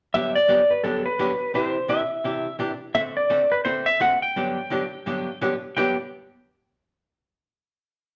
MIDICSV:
0, 0, Header, 1, 3, 480
1, 0, Start_track
1, 0, Key_signature, 1, "major"
1, 0, Tempo, 351906
1, 194, Time_signature, 4, 2, 24, 8
1, 11128, End_track
2, 0, Start_track
2, 0, Title_t, "Electric slide guitar"
2, 0, Program_c, 0, 29
2, 193, Note_on_c, 0, 76, 93
2, 478, Note_off_c, 0, 76, 0
2, 484, Note_on_c, 0, 74, 102
2, 962, Note_on_c, 0, 71, 76
2, 979, Note_off_c, 0, 74, 0
2, 1140, Note_on_c, 0, 69, 81
2, 1152, Note_off_c, 0, 71, 0
2, 1435, Note_off_c, 0, 69, 0
2, 1440, Note_on_c, 0, 71, 88
2, 2111, Note_off_c, 0, 71, 0
2, 2116, Note_on_c, 0, 72, 90
2, 2586, Note_on_c, 0, 76, 74
2, 2604, Note_off_c, 0, 72, 0
2, 3488, Note_off_c, 0, 76, 0
2, 4020, Note_on_c, 0, 76, 82
2, 4100, Note_off_c, 0, 76, 0
2, 4319, Note_on_c, 0, 74, 75
2, 4796, Note_on_c, 0, 71, 71
2, 4813, Note_off_c, 0, 74, 0
2, 4967, Note_off_c, 0, 71, 0
2, 4975, Note_on_c, 0, 72, 89
2, 5266, Note_on_c, 0, 76, 95
2, 5276, Note_off_c, 0, 72, 0
2, 5460, Note_off_c, 0, 76, 0
2, 5477, Note_on_c, 0, 78, 92
2, 5756, Note_off_c, 0, 78, 0
2, 5762, Note_on_c, 0, 79, 99
2, 7332, Note_off_c, 0, 79, 0
2, 7865, Note_on_c, 0, 79, 82
2, 8143, Note_off_c, 0, 79, 0
2, 11128, End_track
3, 0, Start_track
3, 0, Title_t, "Hollow-body jazz guitar"
3, 0, Program_c, 1, 26
3, 193, Note_on_c, 1, 43, 51
3, 198, Note_on_c, 1, 50, 58
3, 200, Note_on_c, 1, 54, 55
3, 201, Note_on_c, 1, 59, 63
3, 202, Note_on_c, 1, 62, 55
3, 207, Note_on_c, 1, 67, 65
3, 481, Note_off_c, 1, 43, 0
3, 483, Note_off_c, 1, 50, 0
3, 484, Note_off_c, 1, 54, 0
3, 485, Note_off_c, 1, 59, 0
3, 485, Note_off_c, 1, 62, 0
3, 488, Note_off_c, 1, 67, 0
3, 657, Note_on_c, 1, 43, 65
3, 662, Note_on_c, 1, 50, 65
3, 665, Note_on_c, 1, 54, 69
3, 665, Note_on_c, 1, 59, 76
3, 671, Note_on_c, 1, 67, 78
3, 674, Note_on_c, 1, 62, 70
3, 817, Note_off_c, 1, 43, 0
3, 819, Note_off_c, 1, 50, 0
3, 820, Note_off_c, 1, 54, 0
3, 821, Note_off_c, 1, 59, 0
3, 823, Note_off_c, 1, 67, 0
3, 825, Note_off_c, 1, 62, 0
3, 1140, Note_on_c, 1, 43, 59
3, 1144, Note_on_c, 1, 50, 64
3, 1146, Note_on_c, 1, 54, 61
3, 1150, Note_on_c, 1, 62, 63
3, 1152, Note_on_c, 1, 67, 57
3, 1153, Note_on_c, 1, 59, 65
3, 1432, Note_off_c, 1, 43, 0
3, 1434, Note_off_c, 1, 50, 0
3, 1435, Note_off_c, 1, 54, 0
3, 1437, Note_off_c, 1, 62, 0
3, 1438, Note_off_c, 1, 67, 0
3, 1439, Note_off_c, 1, 59, 0
3, 1626, Note_on_c, 1, 50, 64
3, 1627, Note_on_c, 1, 43, 68
3, 1627, Note_on_c, 1, 59, 82
3, 1629, Note_on_c, 1, 54, 69
3, 1631, Note_on_c, 1, 62, 91
3, 1637, Note_on_c, 1, 67, 76
3, 1779, Note_off_c, 1, 43, 0
3, 1779, Note_off_c, 1, 50, 0
3, 1779, Note_off_c, 1, 59, 0
3, 1781, Note_off_c, 1, 54, 0
3, 1781, Note_off_c, 1, 62, 0
3, 1784, Note_off_c, 1, 67, 0
3, 2101, Note_on_c, 1, 48, 61
3, 2109, Note_on_c, 1, 52, 68
3, 2112, Note_on_c, 1, 62, 63
3, 2117, Note_on_c, 1, 67, 70
3, 2391, Note_off_c, 1, 48, 0
3, 2395, Note_off_c, 1, 52, 0
3, 2397, Note_off_c, 1, 62, 0
3, 2399, Note_off_c, 1, 67, 0
3, 2569, Note_on_c, 1, 48, 66
3, 2579, Note_on_c, 1, 52, 69
3, 2581, Note_on_c, 1, 62, 71
3, 2587, Note_on_c, 1, 67, 72
3, 2729, Note_off_c, 1, 48, 0
3, 2734, Note_off_c, 1, 52, 0
3, 2735, Note_off_c, 1, 62, 0
3, 2738, Note_off_c, 1, 67, 0
3, 3059, Note_on_c, 1, 48, 55
3, 3063, Note_on_c, 1, 52, 55
3, 3070, Note_on_c, 1, 62, 59
3, 3070, Note_on_c, 1, 67, 61
3, 3349, Note_off_c, 1, 48, 0
3, 3351, Note_off_c, 1, 52, 0
3, 3354, Note_off_c, 1, 62, 0
3, 3355, Note_off_c, 1, 67, 0
3, 3531, Note_on_c, 1, 48, 69
3, 3532, Note_on_c, 1, 52, 72
3, 3541, Note_on_c, 1, 62, 76
3, 3542, Note_on_c, 1, 67, 81
3, 3689, Note_off_c, 1, 48, 0
3, 3689, Note_off_c, 1, 52, 0
3, 3694, Note_off_c, 1, 62, 0
3, 3695, Note_off_c, 1, 67, 0
3, 4015, Note_on_c, 1, 50, 66
3, 4016, Note_on_c, 1, 57, 62
3, 4019, Note_on_c, 1, 60, 66
3, 4025, Note_on_c, 1, 66, 67
3, 4032, Note_on_c, 1, 69, 69
3, 4307, Note_off_c, 1, 50, 0
3, 4307, Note_off_c, 1, 57, 0
3, 4309, Note_off_c, 1, 60, 0
3, 4312, Note_off_c, 1, 66, 0
3, 4315, Note_off_c, 1, 69, 0
3, 4498, Note_on_c, 1, 50, 69
3, 4501, Note_on_c, 1, 60, 68
3, 4504, Note_on_c, 1, 57, 69
3, 4504, Note_on_c, 1, 66, 77
3, 4510, Note_on_c, 1, 69, 63
3, 4652, Note_off_c, 1, 50, 0
3, 4654, Note_off_c, 1, 60, 0
3, 4655, Note_off_c, 1, 57, 0
3, 4655, Note_off_c, 1, 66, 0
3, 4658, Note_off_c, 1, 69, 0
3, 4982, Note_on_c, 1, 60, 67
3, 4983, Note_on_c, 1, 50, 60
3, 4987, Note_on_c, 1, 57, 56
3, 4989, Note_on_c, 1, 66, 65
3, 4989, Note_on_c, 1, 69, 63
3, 5271, Note_off_c, 1, 50, 0
3, 5271, Note_off_c, 1, 60, 0
3, 5273, Note_off_c, 1, 57, 0
3, 5274, Note_off_c, 1, 66, 0
3, 5274, Note_off_c, 1, 69, 0
3, 5456, Note_on_c, 1, 50, 78
3, 5460, Note_on_c, 1, 57, 74
3, 5465, Note_on_c, 1, 66, 81
3, 5466, Note_on_c, 1, 60, 83
3, 5470, Note_on_c, 1, 69, 89
3, 5611, Note_off_c, 1, 50, 0
3, 5614, Note_off_c, 1, 57, 0
3, 5616, Note_off_c, 1, 66, 0
3, 5617, Note_off_c, 1, 60, 0
3, 5619, Note_off_c, 1, 69, 0
3, 5951, Note_on_c, 1, 43, 61
3, 5951, Note_on_c, 1, 50, 59
3, 5956, Note_on_c, 1, 62, 65
3, 5957, Note_on_c, 1, 54, 65
3, 5959, Note_on_c, 1, 59, 61
3, 5965, Note_on_c, 1, 67, 65
3, 6236, Note_off_c, 1, 43, 0
3, 6236, Note_off_c, 1, 50, 0
3, 6239, Note_off_c, 1, 54, 0
3, 6239, Note_off_c, 1, 62, 0
3, 6240, Note_off_c, 1, 59, 0
3, 6243, Note_off_c, 1, 67, 0
3, 6415, Note_on_c, 1, 43, 67
3, 6424, Note_on_c, 1, 50, 76
3, 6425, Note_on_c, 1, 59, 72
3, 6426, Note_on_c, 1, 54, 67
3, 6432, Note_on_c, 1, 62, 79
3, 6434, Note_on_c, 1, 67, 74
3, 6572, Note_off_c, 1, 43, 0
3, 6577, Note_off_c, 1, 50, 0
3, 6577, Note_off_c, 1, 59, 0
3, 6578, Note_off_c, 1, 54, 0
3, 6581, Note_off_c, 1, 62, 0
3, 6581, Note_off_c, 1, 67, 0
3, 6903, Note_on_c, 1, 43, 48
3, 6907, Note_on_c, 1, 50, 54
3, 6911, Note_on_c, 1, 54, 57
3, 6914, Note_on_c, 1, 59, 54
3, 6915, Note_on_c, 1, 62, 65
3, 6917, Note_on_c, 1, 67, 64
3, 7193, Note_off_c, 1, 43, 0
3, 7195, Note_off_c, 1, 50, 0
3, 7197, Note_off_c, 1, 54, 0
3, 7198, Note_off_c, 1, 59, 0
3, 7199, Note_off_c, 1, 62, 0
3, 7200, Note_off_c, 1, 67, 0
3, 7385, Note_on_c, 1, 43, 72
3, 7387, Note_on_c, 1, 50, 79
3, 7389, Note_on_c, 1, 54, 77
3, 7389, Note_on_c, 1, 59, 68
3, 7392, Note_on_c, 1, 62, 82
3, 7397, Note_on_c, 1, 67, 82
3, 7539, Note_off_c, 1, 43, 0
3, 7540, Note_off_c, 1, 50, 0
3, 7540, Note_off_c, 1, 54, 0
3, 7540, Note_off_c, 1, 59, 0
3, 7542, Note_off_c, 1, 62, 0
3, 7544, Note_off_c, 1, 67, 0
3, 7862, Note_on_c, 1, 43, 69
3, 7872, Note_on_c, 1, 54, 72
3, 7873, Note_on_c, 1, 50, 77
3, 7880, Note_on_c, 1, 59, 81
3, 7884, Note_on_c, 1, 62, 80
3, 7888, Note_on_c, 1, 67, 85
3, 8103, Note_off_c, 1, 43, 0
3, 8108, Note_off_c, 1, 54, 0
3, 8109, Note_off_c, 1, 50, 0
3, 8112, Note_off_c, 1, 59, 0
3, 8114, Note_off_c, 1, 62, 0
3, 8117, Note_off_c, 1, 67, 0
3, 11128, End_track
0, 0, End_of_file